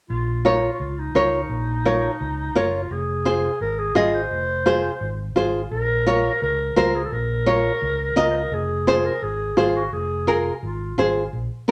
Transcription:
0.10 fingered electric bass A#1, clarinet F4
0.45 clarinet D#4, nylon-string guitar F4 A#4 C#5
0.59 clarinet E4 F4
0.80 fingered electric bass C#2, clarinet F4
0.98 clarinet D#4
1.15 fingered electric bass C#2, nylon-string guitar F4 A#4 C#5
1.49 fingered electric bass A#1
1.85 nylon-string guitar F4 A#4 C#5
2.21 fingered electric bass C#2
2.55 fingered electric bass F#1, nylon-string guitar F4 A#4 C#5, clarinet F4
2.91 fingered electric bass F1, clarinet G#4
3.25 nylon-string guitar F4 G#4 C5
3.61 fingered electric bass G#1, clarinet A#4
3.79 clarinet G#4
3.95 fingered electric bass G#1, nylon-string guitar F4 G#4 D#5, clarinet F4
4.15 clarinet C5
4.31 fingered electric bass F1
4.66 nylon-string guitar F4 G#4 C5
5.01 fingered electric bass G#1
5.36 fingered electric bass G#1, nylon-string guitar F4 G#4 C5
5.71 fingered electric bass A#1, clarinet A#4
6.07 nylon-string guitar F4 A#4 C#5
6.42 fingered electric bass C#2, clarinet A#4
6.76 fingered electric bass C#2, nylon-string guitar F4 A#4 C5, clarinet A#4
6.95 clarinet G#4
7.06 clarinet A4
7.12 fingered electric bass A#1, clarinet A#4
7.46 nylon-string guitar F4 A#4 C#5
7.82 fingered electric bass C#2
8.16 fingered electric bass C#2, nylon-string guitar F4 A#4 D#5, clarinet A#4
8.31 clarinet C5
8.35 clarinet A#4
8.51 fingered electric bass F1, clarinet G#4
8.87 nylon-string guitar F4 G#4 C5, clarinet G#4
9.05 clarinet A#4
9.22 fingered electric bass G#1, clarinet G#4
9.57 fingered electric bass G#1, nylon-string guitar F4 G#4 C5, clarinet F4
9.76 clarinet F#4
9.93 fingered electric bass F1, clarinet G#4
10.27 nylon-string guitar F4 G#4 A#4
10.63 fingered electric bass G#1, clarinet F4
10.98 fingered electric bass G#1, nylon-string guitar F4 G#4 C5
11.33 fingered electric bass A#1
11.68 nylon-string guitar C#4

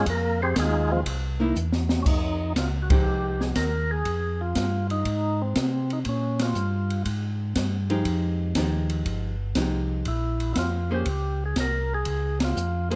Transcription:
0.06 tonewheel organ F2 A#3 A#4, kick, ride
0.42 tonewheel organ C4 G4 G#4 C5
0.56 tonewheel organ D#2 G#3, kick, snare, hi-hat pedal, ride
0.60 tonewheel organ D#4 F4 G#4
0.92 tonewheel organ F3 G#3 C4 F4
1.06 tonewheel organ C2, kick, ride
1.40 hollow-body jazz guitar A#3 D#4 E4
1.56 tonewheel organ E2, hi-hat pedal
1.72 snare
1.89 snare
2.02 tonewheel organ F2 C#4, kick, crash
2.07 tonewheel organ D#4
2.56 tonewheel organ C#2 F4, kick, snare, hi-hat pedal, ride
2.82 tonewheel organ F#4
2.90 hollow-body jazz guitar F3 G#3 D#4 G4, tonewheel organ G4, kick, ride
3.05 tonewheel organ C2
3.41 tonewheel organ G#4, snare
3.55 tonewheel organ D#2 A#4, kick, snare, hi-hat pedal, ride
3.91 tonewheel organ G#4
4.05 tonewheel organ F2, kick, ride
4.41 tonewheel organ F4
4.55 tonewheel organ G2, kick, snare, hi-hat pedal, ride
4.90 tonewheel organ D#4, ride
5.05 tonewheel organ G#2, kick, ride
5.42 tonewheel organ C4
5.56 tonewheel organ C3, kick, snare, hi-hat pedal, ride
5.90 tonewheel organ D#4, ride
6.05 tonewheel organ A#2, kick, ride
6.09 tonewheel organ C#4
6.39 tonewheel organ F4, snare, ride
6.55 tonewheel organ G2, hi-hat pedal
6.90 ride
7.05 tonewheel organ G#2, kick, ride
7.56 tonewheel organ G2, kick, snare, hi-hat pedal, ride
7.90 hollow-body jazz guitar F3 G#3 D#4 G4, ride
8.05 tonewheel organ F2, kick, ride
8.55 tonewheel organ D#2, hollow-body jazz guitar F3 G#3 D#4 G4, kick, snare, hi-hat pedal, ride
8.90 ride
9.05 tonewheel organ G1, kick, ride
9.55 tonewheel organ C2, hollow-body jazz guitar F3 G#3 D#4 G4, kick, snare, hi-hat pedal, ride
10.05 tonewheel organ A#1 E4, kick, ride
10.40 ride
10.54 tonewheel organ F2 E4, kick, snare, hi-hat pedal, ride
10.59 tonewheel organ F4
10.91 hollow-body jazz guitar A#3 C#4 G#4 C5, tonewheel organ G4
11.06 tonewheel organ C#2, kick, ride
11.46 tonewheel organ G#4
11.56 tonewheel organ C2, kick, snare, hi-hat pedal, ride
11.60 tonewheel organ A#4
11.94 tonewheel organ G#4
12.05 tonewheel organ C#2, kick, ride
12.40 snare, ride
12.44 tonewheel organ F4
12.56 tonewheel organ F2, hi-hat pedal
12.90 hollow-body jazz guitar A#3 G#4 C5, ride

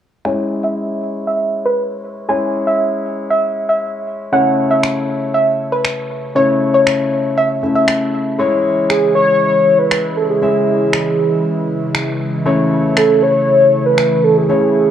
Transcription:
0.25 grand piano G#3 C#4 E4 C#5, synth pluck G#5
0.64 synth pluck E5
1.27 synth pluck E5
1.65 synth pluck B4
2.29 grand piano G#3 C#4 E4 C#5, synth pluck G#5
2.67 synth pluck E5
3.30 synth pluck E5
3.69 synth pluck E5
4.32 grand piano C#3 A3 C#4 E4 C#5, synth pluck F#5
4.71 synth pluck E5
4.83 finger snap
5.34 synth pluck E5
5.72 synth pluck B4
5.85 finger snap
6.35 grand piano C#3 A3 C#4 E4 C#5, synth pluck C#5
6.74 synth pluck C#5
6.87 finger snap
7.38 synth pluck E5
7.63 grand piano C#3 A3 C#4 E4 E5
7.75 synth pluck E5
7.88 finger snap
8.39 analog synth pad C#3 E3 G#3 E4, grand piano G#3 C#4 E4 C#5
8.90 soft synth lead G#4, finger snap
9.15 soft synth lead C#5
9.79 soft synth lead B4
9.91 finger snap
10.17 soft synth lead A4
10.30 soft synth lead G#4
10.42 grand piano G#3 C#4 E4 E5
10.93 finger snap
11.95 finger snap
12.45 grand piano C#3 A3 C#4 E4 C#5, analog synth pad A3 E4
12.97 soft synth lead A4, finger snap
13.23 soft synth lead C#5
13.86 soft synth lead B4
13.98 finger snap
14.24 soft synth lead A4
14.37 soft synth lead G#4
14.49 grand piano C#3 A3 C#4 E4 C#5

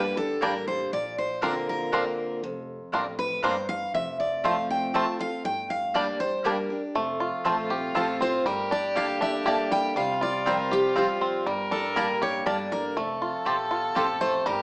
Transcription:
Already playing: upright bass G1, steel-string acoustic guitar D3 G3 A#3 D4 G4 B4
0.17 steel-string acoustic guitar D4 G4 A4
0.41 upright bass A1, steel-string acoustic guitar G3 A#3 D4 G4 A#4, five-string banjo G3 D4, mandolin A#3 G4 D5 G5
0.68 steel-string acoustic guitar C5
0.93 upright bass A#1, steel-string acoustic guitar A#2 D5
1.18 steel-string acoustic guitar C5
1.41 steel-string acoustic guitar D3 A#3 C4 F4 A#4, five-string banjo A#3 C4 D4, mandolin D4 A#4 F5 C6
1.69 steel-string acoustic guitar A#4
1.92 steel-string acoustic guitar D3 A#3 C4 F4, five-string banjo A#3 C4 D4, mandolin D4 A#4 F5 C6
2.43 upright bass F1, steel-string acoustic guitar F2
2.92 upright bass A1, steel-string acoustic guitar A2, five-string banjo A#3 C4 D4, mandolin D4 A#4 F5 C6
3.19 steel-string acoustic guitar B4
3.42 upright bass G1, steel-string acoustic guitar G2 C5, five-string banjo A#3 C4 D4, mandolin D4 A#4 F5 C6
3.69 steel-string acoustic guitar F5
3.94 upright bass F1, steel-string acoustic guitar F2 E5
4.20 steel-string acoustic guitar D5
4.44 steel-string acoustic guitar F3 A3 C4 F4 F5, five-string banjo A3 C4 F4, mandolin C4 F4 C5 A5
4.70 steel-string acoustic guitar G5
4.94 steel-string acoustic guitar F3 A3 C4 F4 A5, five-string banjo A3 C4 F4, mandolin C4 F4 C5 A5
5.19 steel-string acoustic guitar C4 F4 F5
5.45 upright bass G1, steel-string acoustic guitar G2 G5
5.70 steel-string acoustic guitar F5
5.94 steel-string acoustic guitar G3 A#3 D4 G4 D5, five-string banjo G3 D4, mandolin A#3 G4 D5 G5
6.19 steel-string acoustic guitar D4 G4 C5
6.44 steel-string acoustic guitar G3 A#3 D4 G4 A#4, five-string banjo G3 D4, mandolin A#3 G4 D5 G5
6.70 steel-string acoustic guitar D4 G4
6.95 upright bass F1, steel-string acoustic guitar F2, five-string banjo A3, fiddle F4
7.20 five-string banjo F4
7.44 upright bass A#1, steel-string acoustic guitar F3 A3 C4 F4, five-string banjo A3, mandolin C4 F4 C5 A5
7.70 steel-string acoustic guitar C4 F4, five-string banjo G4
7.95 upright bass A1, steel-string acoustic guitar F3 A3 C4 F4 A4, mandolin C4 F4 C5 A5, five-string banjo F4
8.20 five-string banjo C4, steel-string acoustic guitar C4 F4 C5
8.45 upright bass G1, steel-string acoustic guitar G2 A#4, five-string banjo G3, fiddle G4
8.71 five-string banjo D4, steel-string acoustic guitar D5
8.95 steel-string acoustic guitar G3 A#3 D4 A4 F5, mandolin A#3 G4 D5 A5, five-string banjo G4
9.21 five-string banjo D4, steel-string acoustic guitar E5
9.45 steel-string acoustic guitar G3 A#3 D4 A4 D5, mandolin A#3 G4 D5 A5, five-string banjo G4
9.71 five-string banjo G3, steel-string acoustic guitar G5
9.96 upright bass C2, steel-string acoustic guitar C3 F5, five-string banjo G3, fiddle F4
10.21 five-string banjo F4, steel-string acoustic guitar D5
10.46 steel-string acoustic guitar F3 G3 C4 G4 A#4, five-string banjo G3, mandolin C4 F4 C5 G5
10.71 five-string banjo G4, steel-string acoustic guitar G4
10.96 steel-string acoustic guitar F3 G3 C4 F4 G4, mandolin C4 F4 C5 G5, five-string banjo F4
11.21 five-string banjo C4
11.46 upright bass G1, steel-string acoustic guitar G2, five-string banjo G3, fiddle A#4
11.71 five-string banjo D4, steel-string acoustic guitar A4
11.96 upright bass A1, steel-string acoustic guitar G3 A#3 D4 A#4, five-string banjo G3, mandolin A#3 G4 D5 A5
12.22 five-string banjo G4, steel-string acoustic guitar C#5
12.46 upright bass G1, steel-string acoustic guitar G3 A#3 D4 A4 D5, mandolin A#3 G4 D5 A5, five-string banjo D4
12.72 five-string banjo D4, steel-string acoustic guitar A#4
12.96 upright bass F1, steel-string acoustic guitar F2, five-string banjo A3, fiddle A4
13.22 five-string banjo F4
13.45 upright bass A#1, steel-string acoustic guitar E2, mandolin C4 F4 C5 A5, five-string banjo G4
13.71 five-string banjo F4
13.95 upright bass A1, steel-string acoustic guitar F2 A4, mandolin C4 F4 C5 A5, five-string banjo G4
14.21 five-string banjo A3, steel-string acoustic guitar C5
14.46 upright bass G1, steel-string acoustic guitar G2 A#4, five-string banjo G3, fiddle G4

